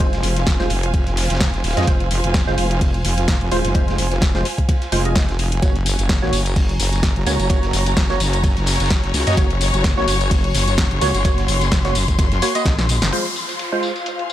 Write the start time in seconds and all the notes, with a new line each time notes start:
Already playing: F1 F4 C5 F5 G#5
0.00 G#3 F4 C5, kick, closed hi-hat, ride
0.13 snare, closed hi-hat
0.23 F1, open hi-hat, ride
0.36 snare, closed hi-hat
0.46 F1, kick, snare, closed hi-hat, ride
0.60 G#3 F4 C5, snare
0.70 F1, open hi-hat, ride
0.83 closed hi-hat
0.94 kick, closed hi-hat, ride
1.06 F1, snare, closed hi-hat
1.17 snare, open hi-hat, ride
1.24 snare, ride
1.30 F1, snare, closed hi-hat, ride
1.35 snare, ride
1.40 kick, snare, closed hi-hat, ride
1.54 F1, snare, closed hi-hat
1.64 D#1, snare, open hi-hat, ride
1.71 snare, ride
1.77 F2 G#3 F4 D#5, snare, closed hi-hat, ride
1.82 snare, ride
1.87 F1 G#3 F4 C5, kick, closed hi-hat, ride
2.00 closed hi-hat, ride
2.11 open hi-hat, ride
2.24 F1, closed hi-hat
2.34 kick, snare, closed hi-hat, ride
2.47 F#1 G#3 F4 C5, snare
2.58 F1, open hi-hat, ride
2.71 closed hi-hat
2.81 kick, closed hi-hat, open hi-hat
2.94 closed hi-hat
3.05 F1, open hi-hat, ride
3.18 closed hi-hat
3.28 kick, snare, closed hi-hat, ride
3.41 F1, closed hi-hat
3.52 D#1 G#3 F4 C5, open hi-hat, ride
3.64 F1, snare, closed hi-hat
3.75 G#3 F4 C5, kick, closed hi-hat, ride
3.88 snare, closed hi-hat
3.98 F1, open hi-hat, ride
4.11 snare, closed hi-hat
4.21 F1, kick, snare, closed hi-hat, ride
4.34 G#3 F4 C5, snare
4.45 open hi-hat, ride
4.58 kick, closed hi-hat
4.69 kick, closed hi-hat, ride
4.81 snare, closed hi-hat
4.92 F1 G#3 F4 C5, open hi-hat, ride
5.05 G#3 F4 D#5, closed hi-hat
5.15 kick, snare, closed hi-hat, ride
5.29 F1, snare, closed hi-hat
5.39 open hi-hat, ride
5.52 closed hi-hat
5.62 F#1 A#3 F#4 C#5, kick, closed hi-hat, ride, tambourine
5.76 closed hi-hat, ride
5.86 C#5, open hi-hat, ride, tambourine
5.99 F#1, closed hi-hat, tambourine
6.09 kick, snare, closed hi-hat, ride, tambourine
6.22 G#1 A#3 F#4 C#5, snare
6.33 F#1, open hi-hat, ride, tambourine
6.41 A#5
6.46 closed hi-hat, tambourine
6.56 kick, closed hi-hat, open hi-hat, tambourine
6.69 closed hi-hat
6.80 F#1, open hi-hat, ride, tambourine
6.93 closed hi-hat, tambourine
7.03 kick, snare, closed hi-hat, ride
7.16 F#1, closed hi-hat
7.26 C#2 A#3 F#4 C#5, open hi-hat, ride, tambourine
7.39 F#1, snare, closed hi-hat, tambourine
7.49 A#3 F#4 C#5, kick, closed hi-hat, ride, tambourine
7.63 snare, closed hi-hat
7.73 F#1, open hi-hat, ride, tambourine
7.86 snare, closed hi-hat, tambourine
7.97 F#1, kick, snare, closed hi-hat, ride, tambourine
8.10 A#3 F#4 C#5, snare
8.20 F#1, open hi-hat, ride, tambourine
8.33 closed hi-hat, tambourine
8.44 kick, closed hi-hat, ride, tambourine
8.57 F#1, snare, closed hi-hat
8.66 snare, open hi-hat, ride, tambourine
8.73 snare, ride
8.80 F#1, snare, closed hi-hat, ride, tambourine
8.85 snare, ride
8.90 kick, snare, closed hi-hat, ride
9.04 F#1, snare, closed hi-hat
9.14 C#2, snare, open hi-hat, ride, tambourine
9.20 snare, ride
9.27 F#2 A#3 F#4 D#5, snare, closed hi-hat, ride, tambourine
9.33 snare, ride
9.37 F#1 A#3 F#4 C#5, kick, closed hi-hat, ride, tambourine
9.50 closed hi-hat, ride
9.61 open hi-hat, ride, tambourine
9.74 F#1, closed hi-hat, tambourine
9.84 kick, snare, closed hi-hat, ride, tambourine
9.97 G#1 A#3 F#4 C#5, snare
10.07 F#1, open hi-hat, ride, tambourine
10.21 closed hi-hat, tambourine
10.31 kick, closed hi-hat, open hi-hat, tambourine
10.44 closed hi-hat
10.55 F#1, open hi-hat, ride, tambourine
10.59 C6
10.68 closed hi-hat, tambourine
10.78 kick, snare, closed hi-hat, ride, tambourine
10.91 F#1, closed hi-hat
11.01 C#2 A#3 F#4 C#5, open hi-hat, ride, tambourine
11.15 F#1, snare, closed hi-hat, tambourine
11.25 A#3 F#4 C#5, kick, closed hi-hat, ride, tambourine
11.38 snare, closed hi-hat
11.48 F#1, open hi-hat, ride, tambourine
11.61 snare, closed hi-hat, tambourine
11.71 F#1, kick, snare, closed hi-hat, ride, tambourine
11.85 A#3 F#4 C#5, snare, closed hi-hat
11.95 F#1, open hi-hat, ride, tambourine
12.08 kick, closed hi-hat, tambourine
12.19 F#1, kick, closed hi-hat, ride, tambourine
12.32 snare, closed hi-hat
12.42 A#3 F#4 C#5, open hi-hat, ride, tambourine
12.55 A#3 F#4 D#5, closed hi-hat, tambourine
12.66 A#1, kick, snare, closed hi-hat, ride, tambourine
12.78 snare, closed hi-hat
12.89 open hi-hat, tambourine
13.02 F#1, snare, closed hi-hat, tambourine
13.12 G#3 F4 C5, closed hi-hat, tambourine, downlifter
13.26 closed hi-hat
13.36 tambourine
13.46 C5 F5, closed hi-hat, tambourine
13.59 closed hi-hat, tambourine
13.72 G#3 F4 C5
13.83 tambourine
13.96 closed hi-hat, tambourine
14.06 closed hi-hat, tambourine
14.19 closed hi-hat
14.23 G#5
14.30 tambourine